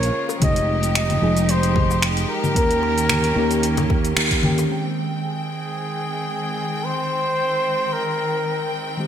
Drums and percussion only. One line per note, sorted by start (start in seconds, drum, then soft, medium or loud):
0.03 closed hi-hat soft
0.03 shaker soft
0.29 high bongo medium
0.29 shaker medium
0.42 kick loud
0.42 closed hi-hat medium
0.42 low conga medium
0.42 shaker medium
0.56 closed hi-hat soft
0.56 shaker soft
0.83 closed hi-hat soft
0.83 shaker medium
0.95 finger snap loud
0.95 closed hi-hat medium
0.95 shaker medium
1.10 closed hi-hat soft
1.10 low conga medium
1.10 shaker soft
1.37 closed hi-hat soft
1.37 shaker medium
1.49 closed hi-hat medium
1.49 shaker medium
1.63 closed hi-hat soft
1.63 shaker soft
1.76 kick loud
1.76 low conga medium
1.91 high bongo medium
1.91 shaker medium
2.02 finger snap loud
2.02 closed hi-hat medium
2.02 shaker soft
2.17 closed hi-hat soft
2.17 shaker soft
2.44 low conga medium
2.44 shaker medium
2.56 kick loud
2.56 closed hi-hat medium
2.56 shaker medium
2.71 closed hi-hat soft
2.71 shaker soft
2.83 high bongo medium
2.98 closed hi-hat soft
2.98 shaker medium
3.09 finger snap loud
3.09 closed hi-hat medium
3.09 low conga medium
3.09 shaker medium
3.24 closed hi-hat medium
3.24 shaker soft
3.51 closed hi-hat soft
3.51 shaker medium
3.63 closed hi-hat medium
3.63 shaker medium
3.77 closed hi-hat soft
3.77 high bongo medium
3.77 low conga medium
3.77 shaker soft
3.90 kick loud
3.90 high bongo medium
4.05 closed hi-hat soft
4.05 shaker medium
4.17 finger snap loud
4.17 closed hi-hat medium
4.17 shaker medium
4.31 kick medium
4.31 closed hi-hat soft
4.31 shaker soft
4.43 low conga medium
4.58 closed hi-hat soft
4.58 high bongo medium
4.58 shaker medium